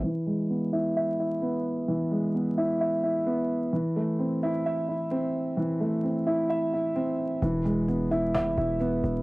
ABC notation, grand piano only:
X:1
M:4/4
L:1/8
Q:1/4=130
K:Ephr
V:1 name="Grand piano"
E, ^G, B, E e E B,2 | E, ^G, B, E e E B,2 | E, A, C E e E C2 | E, A, C E e E C2 |
E, ^G, B, E e E B,2 |]